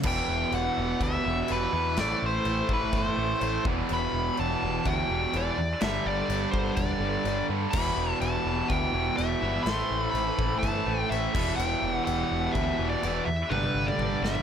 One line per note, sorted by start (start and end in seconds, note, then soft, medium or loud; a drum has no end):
0.03 0.20 E1 medium
0.03 1.23 E2 medium
0.03 1.24 B2 loud
0.03 1.94 E3 medium
0.03 1.94 B3 medium
0.03 1.94 E4 medium
0.03 1.94 G4 medium
0.03 0.54 G5 loud
0.03 kick loud
0.03 crash loud
0.03 china medium
0.08 1.24 E3 loud
0.28 0.44 E1 medium
0.52 0.68 E1 medium
0.52 1.03 F#5 loud
0.52 china medium
0.78 0.93 E1 medium
1.00 1.16 D2 medium
1.00 1.51 E5 loud
1.00 kick medium
1.00 china medium
1.24 1.41 E1 medium
1.24 1.47 E2 medium
1.24 1.48 B2 medium
1.24 1.51 E3 medium
1.48 1.66 E1 medium
1.48 1.95 E2 medium
1.48 1.96 B2 medium
1.48 1.98 E3 medium
1.48 1.99 B4 medium
1.48 china medium
1.73 1.99 E2 medium
1.73 1.96 E2 medium
1.73 1.96 B2 medium
1.73 1.97 E3 medium
1.96 2.13 A1 medium
1.96 3.15 A2 loud
1.96 3.17 E3 loud
1.96 3.64 A3 medium
1.96 3.15 A3 loud
1.96 3.64 E4 medium
1.96 3.64 A4 medium
1.96 3.64 C5 medium
1.96 2.23 D5 loud
1.96 snare loud
1.96 china medium
2.22 2.38 A1 medium
2.22 2.73 C5 medium
2.45 2.61 A1 loud
2.45 china medium
2.69 2.85 A1 medium
2.69 kick medium
2.73 2.96 B4 medium
2.92 3.08 G1 medium
2.92 kick medium
2.92 china medium
2.98 3.63 C5 medium
3.16 3.33 A1 medium
3.16 3.38 A2 medium
3.16 3.40 E3 medium
3.16 3.39 A3 medium
3.39 3.57 A1 loud
3.39 3.63 A2 medium
3.39 3.64 E3 medium
3.39 3.64 A3 medium
3.39 china medium
3.63 3.81 E1 medium
3.63 4.83 E2 medium
3.63 4.84 B2 medium
3.63 5.80 E3 medium
3.63 4.85 E3 loud
3.63 5.80 B3 medium
3.63 5.80 E4 medium
3.63 5.80 G4 medium
3.63 kick loud
3.89 4.06 E1 loud
3.89 china medium
3.93 4.40 B5 loud
4.13 4.29 E1 medium
4.37 4.55 E1 medium
4.37 4.88 A5 loud
4.37 china medium
4.63 4.78 E1 medium
4.85 5.02 D2 medium
4.85 5.08 E2 medium
4.85 5.09 B2 medium
4.85 5.08 E3 medium
4.85 5.35 G5 loud
4.85 kick medium
4.85 china medium
5.09 5.25 E1 medium
5.09 5.58 E2 medium
5.09 5.57 B2 medium
5.09 5.56 E3 medium
5.33 5.50 E1 medium
5.33 5.57 E2 medium
5.33 5.57 B2 medium
5.33 5.58 E3 medium
5.33 5.80 D5 medium
5.33 china medium
5.58 5.73 E2 medium
5.81 5.97 G1 medium
5.81 7.01 G2 medium
5.81 7.01 D3 loud
5.81 7.73 G3 medium
5.81 7.73 D4 medium
5.81 7.74 A4 medium
5.81 7.73 B4 medium
5.81 6.06 E5 loud
5.81 snare loud
5.81 china medium
5.85 7.00 G3 loud
6.06 6.22 G1 medium
6.06 6.51 D5 medium
6.29 6.45 G1 loud
6.29 china medium
6.51 6.69 G1 medium
6.51 6.76 C5 medium
6.51 kick medium
6.76 6.93 E1 medium
6.76 7.45 D5 medium
6.76 kick medium
6.76 china medium
6.99 7.16 G1 medium
6.99 7.24 G3 medium
7.03 7.24 G2 medium
7.03 7.25 D3 medium
7.24 7.41 G1 medium
7.24 7.72 G2 medium
7.24 7.73 D3 medium
7.24 china medium
7.29 7.74 G3 loud
7.49 7.66 G2 medium
7.49 7.74 G2 medium
7.49 7.73 D3 medium
7.49 7.73 G3 medium
7.71 7.90 E1 medium
7.71 8.21 B5 loud
7.71 kick loud
7.71 china medium
7.71 crash loud
7.75 8.93 E2 medium
7.75 8.94 B2 loud
7.75 9.65 E3 medium
7.75 8.93 E3 loud
7.75 9.65 B3 medium
7.75 9.65 E4 medium
7.75 9.65 G4 medium
7.96 8.13 E1 medium
8.21 8.37 E1 loud
8.21 8.71 A5 loud
8.21 china medium
8.45 8.61 E1 medium
8.68 8.86 D2 medium
8.68 9.17 G5 loud
8.68 kick medium
8.68 china medium
8.93 9.09 E1 medium
8.93 9.16 E2 medium
8.93 9.18 B2 medium
8.93 9.21 E3 medium
9.17 9.34 E1 medium
9.17 9.65 E2 medium
9.17 9.65 B2 medium
9.17 9.67 E5 medium
9.17 china medium
9.21 9.68 E3 medium
9.42 9.58 G1 medium
9.42 9.67 E2 medium
9.42 9.66 B2 medium
9.42 9.67 E3 medium
9.63 9.82 A1 loud
9.63 10.85 A2 loud
9.63 10.10 C6 loud
9.63 china medium
9.67 10.86 E3 loud
9.67 11.34 A3 medium
9.67 10.85 A3 loud
9.67 11.34 E4 medium
9.67 11.34 A4 medium
9.67 11.34 C5 medium
9.67 snare loud
9.91 10.06 A1 medium
10.10 10.30 A1 medium
10.10 10.58 B5 loud
10.15 china medium
10.39 10.55 A1 medium
10.39 kick loud
10.59 11.10 A5 loud
10.63 10.79 G1 medium
10.63 kick medium
10.63 china medium
10.86 11.03 A1 medium
10.86 11.09 A2 medium
10.86 11.10 E3 medium
10.86 11.09 A3 medium
11.09 11.27 A1 medium
11.09 11.33 A2 medium
11.09 11.34 E3 medium
11.09 11.55 E5 medium
11.09 china medium
11.14 11.35 A3 loud
11.34 11.51 E1 medium
11.34 12.53 E2 medium
11.34 12.54 B2 medium
11.34 13.49 E3 medium
11.34 12.55 E3 medium
11.34 13.49 B3 medium
11.34 13.49 E4 medium
11.34 13.49 G4 medium
11.34 kick loud
11.34 crash loud
11.56 11.74 E1 medium
11.56 12.04 G5 loud
11.56 china medium
11.82 11.98 E1 medium
12.05 12.23 E1 loud
12.05 12.55 F#5 loud
12.05 china medium
12.31 12.47 E1 medium
12.52 12.71 D2 medium
12.52 12.78 E2 medium
12.52 12.89 E5 loud
12.52 kick medium
12.52 china medium
12.58 12.79 B2 medium
12.58 12.77 E3 medium
12.78 12.95 E1 medium
12.78 13.27 E2 medium
12.78 13.26 B2 medium
12.78 13.25 E3 medium
12.90 13.25 D5 medium
13.02 13.19 E1 medium
13.02 13.25 E2 medium
13.02 13.26 B2 medium
13.02 13.26 E3 medium
13.02 china medium
13.25 13.43 E2 medium
13.25 13.51 E5 medium
13.50 13.66 G1 medium
13.50 14.42 G2 loud
13.50 14.42 D3 loud
13.50 14.42 G3 medium
13.50 14.42 G3 loud
13.50 14.42 D4 medium
13.50 14.42 A4 medium
13.50 13.88 B4 medium
13.50 14.42 B4 medium
13.50 high tom medium
13.63 high tom medium
13.74 13.90 G1 medium
13.87 14.23 D5 medium
13.87 high tom medium
13.98 14.14 G1 medium
13.98 mid tom medium
14.22 14.38 G1 medium
14.22 14.42 E5 medium
14.22 snare medium
14.35 mid tom medium